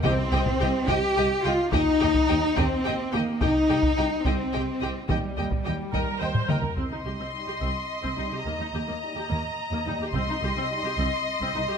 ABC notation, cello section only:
X:1
M:6/8
L:1/16
Q:3/8=71
K:Cm
V:1 name="Cello section" clef=bass
C6 G4 F2 | E6 C4 B,2 | E6 C6 | G,8- G,2 z2 |
C,, C,, C,, C,, z C,, C,, z2 C,, C,, C,, | E,, E,, E,, E,, z E,, E,, z2 E,, E,, E,, | C,, C,, C,, C,, z C,, C,, z2 C,, C,, C,, |]